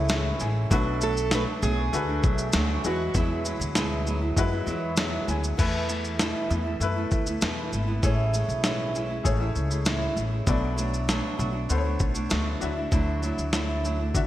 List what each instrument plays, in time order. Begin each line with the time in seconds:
Already playing: upright bass C#2, felt piano A3 E4 G#4 C#5, steel-string acoustic guitar G#4
0.09 nylon-string guitar A2 E3 G#3 C#4 E4, felt piano E5, snare, shaker
0.39 upright bass A1, nylon-string guitar E3 G#3 C#4 E4, felt piano G#5, shaker
0.70 upright bass B1, nylon-string guitar B2 F#3 A3 D4 F#4, felt piano A3 D4 F#4 B4, kick, shaker
1.01 nylon-string guitar F#3 A3 D4 F#4, steel-string acoustic guitar A4, shaker
1.17 shaker
1.31 nylon-string guitar B2 F#3 A3 D4 F#4, steel-string acoustic guitar B4, snare, shaker
1.61 upright bass B1, nylon-string guitar F#3 A3 D4 F#4, steel-string acoustic guitar G#4, shaker
1.76 nylon-string guitar A3 D4 F#4
1.92 upright bass D2, felt piano A3 D4 F#4 B4, shaker
2.07 nylon-string guitar A3 D4 F#4
2.22 upright bass B1, nylon-string guitar F#3 A3 D4 F#4, kick, shaker
2.38 shaker
2.52 upright bass D2, nylon-string guitar B2 F#3 A3 D4 F#4, snare, shaker
2.83 upright bass E2, nylon-string guitar F#3 G#3 B3 E4, felt piano G#3 E4 F#4 B4, shaker
2.87 steel-string acoustic guitar F#4
3.14 nylon-string guitar E2 B2 F#3 G#3 B3 E4, upright bass E2, steel-string acoustic guitar E4, kick, shaker
3.44 nylon-string guitar F#3 G#3 B3 E4, shaker
3.60 upright bass D2, shaker
3.75 nylon-string guitar E2 B2 F#3 G#3 B3 E4, snare, shaker
4.06 nylon-string guitar F#3 G#3 B3 E4, shaker
4.21 nylon-string guitar F#3 G#3 B3 E4
4.37 upright bass F#2, felt piano G#3 E4 F#4 B4, kick, shaker
4.52 nylon-string guitar F#3 G#3 B3 E4
4.66 upright bass E2, nylon-string guitar F#3 G#3 B3 E4, shaker
4.96 nylon-string guitar E2 B2 F#3 G#3 B3 E4, felt piano E5, snare, shaker
5.27 upright bass D2, nylon-string guitar F#3 G#3 B3 E4, felt piano G#5, shaker
5.44 shaker
5.57 nylon-string guitar E2 B2 E3 A3 B3 E4, upright bass E2, felt piano A3 E4 B4, kick, crash, shaker
5.88 nylon-string guitar E3 A3 B3 E4, shaker
6.04 shaker
6.19 nylon-string guitar E2 B2 E3 A3 B3 E4, snare, shaker
6.50 upright bass E2, nylon-string guitar E3 A3 B3 E4, shaker
6.65 nylon-string guitar E3 A3 B3 E4
6.80 upright bass F#2, felt piano A3 E4 B4, shaker
6.96 nylon-string guitar E3 A3 B3 E4
7.11 upright bass D2, kick, shaker
7.26 nylon-string guitar E3 A3 B3 E4, shaker
7.41 nylon-string guitar E2 B2 E3 A3 B3 E4, upright bass E2, snare, shaker
7.72 upright bass G#1, nylon-string guitar E3 A3 B3 E4, shaker
7.88 nylon-string guitar E3 A3 B3 E4
8.02 upright bass A1, nylon-string guitar A2 E3 G#3 C#4 E4, felt piano A3 G#4 C#5, kick, shaker
8.33 nylon-string guitar E3 G#3 C#4 E4, shaker
8.48 upright bass B1, shaker
8.64 nylon-string guitar A2 E3 G#3 C#4 E4, snare, shaker
8.94 nylon-string guitar E3 G#3 C#4 E4, shaker
9.09 nylon-string guitar G#3 C#4 E4
9.23 upright bass A1, felt piano A3 G#4 C#5, kick, shaker
9.40 nylon-string guitar G#3 C#4 E4
9.55 upright bass C#2, shaker
9.70 nylon-string guitar G#3 C#4 E4, shaker
9.85 nylon-string guitar A2 E3 G#3 C#4 E4, snare, shaker
10.16 upright bass A1, nylon-string guitar E3 G#3 C#4 E4, shaker
10.31 nylon-string guitar G#3 C#4 E4
10.46 upright bass B1, nylon-string guitar B2 F#3 A3 D4 F#4, felt piano B3 A4 D5, kick, shaker
10.76 nylon-string guitar F#3 A3 D4 F#4, shaker
10.94 shaker
11.08 nylon-string guitar B2 F#3 A3 D4 F#4, snare, shaker
11.38 upright bass B1, nylon-string guitar F#3 A3 D4 F#4, shaker
11.53 nylon-string guitar A3 D4 F#4
11.69 upright bass D2, felt piano B3 A4 C5, shaker
11.78 felt piano C#5
11.84 nylon-string guitar A3 D4 F#4
11.99 upright bass B1, kick, shaker
12.14 nylon-string guitar A3 D4 F#4, shaker
12.29 upright bass D2, nylon-string guitar B2 F#3 A3 D4 F#4, snare, shaker
12.60 upright bass D2, nylon-string guitar F#3 A3 D4 E4, felt piano D4 F#4 E5, shaker
12.76 nylon-string guitar A3 D4 E4
12.91 upright bass D2, nylon-string guitar D3 F#3 A3 D4 E4, kick, shaker
13.22 nylon-string guitar F#3 A3 D4 E4, shaker
13.38 upright bass D2, shaker
13.52 nylon-string guitar D3 F#3 A3 D4 E4, snare, shaker
13.83 nylon-string guitar F#3 A3 D4 E4, shaker
13.99 nylon-string guitar A3 D4 E4
14.14 upright bass D3, felt piano D4 F#4 E5, kick, shaker